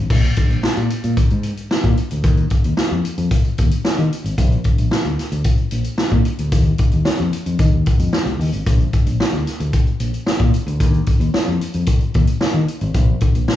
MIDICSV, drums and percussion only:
0, 0, Header, 1, 2, 480
1, 0, Start_track
1, 0, Tempo, 535236
1, 91, Time_signature, 4, 2, 24, 8
1, 12161, End_track
2, 0, Start_track
2, 0, Title_t, "Drums"
2, 91, Note_on_c, 9, 36, 122
2, 91, Note_on_c, 9, 49, 95
2, 181, Note_off_c, 9, 36, 0
2, 181, Note_off_c, 9, 49, 0
2, 217, Note_on_c, 9, 42, 39
2, 307, Note_off_c, 9, 42, 0
2, 328, Note_on_c, 9, 42, 73
2, 335, Note_on_c, 9, 36, 102
2, 417, Note_off_c, 9, 42, 0
2, 424, Note_off_c, 9, 36, 0
2, 453, Note_on_c, 9, 42, 45
2, 542, Note_off_c, 9, 42, 0
2, 568, Note_on_c, 9, 38, 127
2, 658, Note_off_c, 9, 38, 0
2, 686, Note_on_c, 9, 42, 37
2, 776, Note_off_c, 9, 42, 0
2, 810, Note_on_c, 9, 42, 80
2, 900, Note_off_c, 9, 42, 0
2, 929, Note_on_c, 9, 42, 54
2, 1018, Note_off_c, 9, 42, 0
2, 1048, Note_on_c, 9, 42, 90
2, 1050, Note_on_c, 9, 36, 105
2, 1138, Note_off_c, 9, 42, 0
2, 1140, Note_off_c, 9, 36, 0
2, 1168, Note_on_c, 9, 42, 34
2, 1257, Note_off_c, 9, 42, 0
2, 1284, Note_on_c, 9, 42, 84
2, 1374, Note_off_c, 9, 42, 0
2, 1411, Note_on_c, 9, 42, 61
2, 1500, Note_off_c, 9, 42, 0
2, 1532, Note_on_c, 9, 38, 115
2, 1622, Note_off_c, 9, 38, 0
2, 1648, Note_on_c, 9, 36, 82
2, 1653, Note_on_c, 9, 42, 35
2, 1738, Note_off_c, 9, 36, 0
2, 1743, Note_off_c, 9, 42, 0
2, 1770, Note_on_c, 9, 42, 72
2, 1860, Note_off_c, 9, 42, 0
2, 1889, Note_on_c, 9, 42, 57
2, 1978, Note_off_c, 9, 42, 0
2, 2005, Note_on_c, 9, 42, 97
2, 2007, Note_on_c, 9, 36, 117
2, 2095, Note_off_c, 9, 42, 0
2, 2097, Note_off_c, 9, 36, 0
2, 2128, Note_on_c, 9, 42, 39
2, 2217, Note_off_c, 9, 42, 0
2, 2243, Note_on_c, 9, 42, 74
2, 2252, Note_on_c, 9, 36, 90
2, 2332, Note_off_c, 9, 42, 0
2, 2342, Note_off_c, 9, 36, 0
2, 2368, Note_on_c, 9, 42, 55
2, 2458, Note_off_c, 9, 42, 0
2, 2485, Note_on_c, 9, 38, 121
2, 2575, Note_off_c, 9, 38, 0
2, 2733, Note_on_c, 9, 42, 76
2, 2823, Note_off_c, 9, 42, 0
2, 2848, Note_on_c, 9, 42, 47
2, 2938, Note_off_c, 9, 42, 0
2, 2968, Note_on_c, 9, 42, 105
2, 2969, Note_on_c, 9, 36, 106
2, 3058, Note_off_c, 9, 42, 0
2, 3059, Note_off_c, 9, 36, 0
2, 3090, Note_on_c, 9, 42, 37
2, 3180, Note_off_c, 9, 42, 0
2, 3210, Note_on_c, 9, 42, 82
2, 3217, Note_on_c, 9, 36, 98
2, 3299, Note_off_c, 9, 42, 0
2, 3307, Note_off_c, 9, 36, 0
2, 3330, Note_on_c, 9, 42, 58
2, 3420, Note_off_c, 9, 42, 0
2, 3449, Note_on_c, 9, 38, 110
2, 3539, Note_off_c, 9, 38, 0
2, 3581, Note_on_c, 9, 42, 33
2, 3670, Note_off_c, 9, 42, 0
2, 3701, Note_on_c, 9, 42, 67
2, 3790, Note_off_c, 9, 42, 0
2, 3817, Note_on_c, 9, 42, 58
2, 3906, Note_off_c, 9, 42, 0
2, 3928, Note_on_c, 9, 36, 106
2, 3929, Note_on_c, 9, 42, 102
2, 4018, Note_off_c, 9, 36, 0
2, 4019, Note_off_c, 9, 42, 0
2, 4052, Note_on_c, 9, 42, 38
2, 4142, Note_off_c, 9, 42, 0
2, 4162, Note_on_c, 9, 42, 71
2, 4171, Note_on_c, 9, 36, 89
2, 4252, Note_off_c, 9, 42, 0
2, 4260, Note_off_c, 9, 36, 0
2, 4288, Note_on_c, 9, 42, 50
2, 4377, Note_off_c, 9, 42, 0
2, 4406, Note_on_c, 9, 38, 121
2, 4496, Note_off_c, 9, 38, 0
2, 4527, Note_on_c, 9, 42, 36
2, 4616, Note_off_c, 9, 42, 0
2, 4655, Note_on_c, 9, 38, 41
2, 4655, Note_on_c, 9, 42, 72
2, 4744, Note_off_c, 9, 38, 0
2, 4745, Note_off_c, 9, 42, 0
2, 4769, Note_on_c, 9, 42, 58
2, 4859, Note_off_c, 9, 42, 0
2, 4881, Note_on_c, 9, 42, 98
2, 4887, Note_on_c, 9, 36, 112
2, 4971, Note_off_c, 9, 42, 0
2, 4976, Note_off_c, 9, 36, 0
2, 5000, Note_on_c, 9, 42, 35
2, 5090, Note_off_c, 9, 42, 0
2, 5120, Note_on_c, 9, 42, 87
2, 5210, Note_off_c, 9, 42, 0
2, 5240, Note_on_c, 9, 42, 65
2, 5330, Note_off_c, 9, 42, 0
2, 5361, Note_on_c, 9, 38, 116
2, 5450, Note_off_c, 9, 38, 0
2, 5486, Note_on_c, 9, 36, 85
2, 5575, Note_off_c, 9, 36, 0
2, 5605, Note_on_c, 9, 42, 75
2, 5695, Note_off_c, 9, 42, 0
2, 5727, Note_on_c, 9, 42, 58
2, 5817, Note_off_c, 9, 42, 0
2, 5845, Note_on_c, 9, 42, 107
2, 5849, Note_on_c, 9, 36, 115
2, 5935, Note_off_c, 9, 42, 0
2, 5938, Note_off_c, 9, 36, 0
2, 5970, Note_on_c, 9, 42, 37
2, 6059, Note_off_c, 9, 42, 0
2, 6082, Note_on_c, 9, 42, 77
2, 6091, Note_on_c, 9, 36, 95
2, 6171, Note_off_c, 9, 42, 0
2, 6180, Note_off_c, 9, 36, 0
2, 6202, Note_on_c, 9, 42, 46
2, 6292, Note_off_c, 9, 42, 0
2, 6324, Note_on_c, 9, 38, 123
2, 6413, Note_off_c, 9, 38, 0
2, 6442, Note_on_c, 9, 42, 35
2, 6532, Note_off_c, 9, 42, 0
2, 6572, Note_on_c, 9, 42, 85
2, 6662, Note_off_c, 9, 42, 0
2, 6691, Note_on_c, 9, 42, 55
2, 6780, Note_off_c, 9, 42, 0
2, 6804, Note_on_c, 9, 42, 95
2, 6809, Note_on_c, 9, 36, 111
2, 6894, Note_off_c, 9, 42, 0
2, 6899, Note_off_c, 9, 36, 0
2, 7049, Note_on_c, 9, 42, 83
2, 7057, Note_on_c, 9, 36, 102
2, 7139, Note_off_c, 9, 42, 0
2, 7147, Note_off_c, 9, 36, 0
2, 7170, Note_on_c, 9, 42, 62
2, 7260, Note_off_c, 9, 42, 0
2, 7289, Note_on_c, 9, 38, 124
2, 7379, Note_off_c, 9, 38, 0
2, 7416, Note_on_c, 9, 42, 31
2, 7506, Note_off_c, 9, 42, 0
2, 7539, Note_on_c, 9, 46, 71
2, 7629, Note_off_c, 9, 46, 0
2, 7651, Note_on_c, 9, 42, 55
2, 7740, Note_off_c, 9, 42, 0
2, 7771, Note_on_c, 9, 36, 110
2, 7773, Note_on_c, 9, 42, 98
2, 7860, Note_off_c, 9, 36, 0
2, 7863, Note_off_c, 9, 42, 0
2, 7896, Note_on_c, 9, 42, 34
2, 7986, Note_off_c, 9, 42, 0
2, 8008, Note_on_c, 9, 42, 76
2, 8012, Note_on_c, 9, 36, 92
2, 8098, Note_off_c, 9, 42, 0
2, 8102, Note_off_c, 9, 36, 0
2, 8130, Note_on_c, 9, 42, 54
2, 8219, Note_off_c, 9, 42, 0
2, 8252, Note_on_c, 9, 38, 120
2, 8342, Note_off_c, 9, 38, 0
2, 8370, Note_on_c, 9, 42, 34
2, 8460, Note_off_c, 9, 42, 0
2, 8493, Note_on_c, 9, 38, 38
2, 8493, Note_on_c, 9, 42, 79
2, 8582, Note_off_c, 9, 38, 0
2, 8583, Note_off_c, 9, 42, 0
2, 8612, Note_on_c, 9, 42, 56
2, 8701, Note_off_c, 9, 42, 0
2, 8727, Note_on_c, 9, 42, 97
2, 8728, Note_on_c, 9, 36, 109
2, 8817, Note_off_c, 9, 42, 0
2, 8818, Note_off_c, 9, 36, 0
2, 8849, Note_on_c, 9, 42, 37
2, 8939, Note_off_c, 9, 42, 0
2, 8967, Note_on_c, 9, 42, 89
2, 9056, Note_off_c, 9, 42, 0
2, 9092, Note_on_c, 9, 42, 55
2, 9182, Note_off_c, 9, 42, 0
2, 9206, Note_on_c, 9, 38, 107
2, 9295, Note_off_c, 9, 38, 0
2, 9325, Note_on_c, 9, 36, 95
2, 9334, Note_on_c, 9, 42, 33
2, 9415, Note_off_c, 9, 36, 0
2, 9423, Note_off_c, 9, 42, 0
2, 9450, Note_on_c, 9, 42, 69
2, 9540, Note_off_c, 9, 42, 0
2, 9576, Note_on_c, 9, 42, 53
2, 9666, Note_off_c, 9, 42, 0
2, 9687, Note_on_c, 9, 36, 106
2, 9688, Note_on_c, 9, 42, 100
2, 9777, Note_off_c, 9, 36, 0
2, 9778, Note_off_c, 9, 42, 0
2, 9811, Note_on_c, 9, 42, 35
2, 9900, Note_off_c, 9, 42, 0
2, 9923, Note_on_c, 9, 42, 83
2, 9930, Note_on_c, 9, 36, 92
2, 10013, Note_off_c, 9, 42, 0
2, 10020, Note_off_c, 9, 36, 0
2, 10052, Note_on_c, 9, 42, 50
2, 10142, Note_off_c, 9, 42, 0
2, 10169, Note_on_c, 9, 38, 118
2, 10259, Note_off_c, 9, 38, 0
2, 10413, Note_on_c, 9, 42, 80
2, 10503, Note_off_c, 9, 42, 0
2, 10526, Note_on_c, 9, 42, 52
2, 10616, Note_off_c, 9, 42, 0
2, 10641, Note_on_c, 9, 42, 103
2, 10647, Note_on_c, 9, 36, 110
2, 10730, Note_off_c, 9, 42, 0
2, 10737, Note_off_c, 9, 36, 0
2, 10767, Note_on_c, 9, 42, 35
2, 10856, Note_off_c, 9, 42, 0
2, 10888, Note_on_c, 9, 42, 75
2, 10897, Note_on_c, 9, 36, 107
2, 10978, Note_off_c, 9, 42, 0
2, 10986, Note_off_c, 9, 36, 0
2, 11006, Note_on_c, 9, 42, 59
2, 11095, Note_off_c, 9, 42, 0
2, 11126, Note_on_c, 9, 38, 123
2, 11216, Note_off_c, 9, 38, 0
2, 11256, Note_on_c, 9, 42, 30
2, 11345, Note_off_c, 9, 42, 0
2, 11373, Note_on_c, 9, 42, 62
2, 11463, Note_off_c, 9, 42, 0
2, 11488, Note_on_c, 9, 42, 48
2, 11577, Note_off_c, 9, 42, 0
2, 11607, Note_on_c, 9, 42, 103
2, 11609, Note_on_c, 9, 36, 114
2, 11697, Note_off_c, 9, 42, 0
2, 11699, Note_off_c, 9, 36, 0
2, 11843, Note_on_c, 9, 42, 80
2, 11853, Note_on_c, 9, 36, 106
2, 11933, Note_off_c, 9, 42, 0
2, 11943, Note_off_c, 9, 36, 0
2, 11971, Note_on_c, 9, 42, 51
2, 12061, Note_off_c, 9, 42, 0
2, 12090, Note_on_c, 9, 38, 127
2, 12161, Note_off_c, 9, 38, 0
2, 12161, End_track
0, 0, End_of_file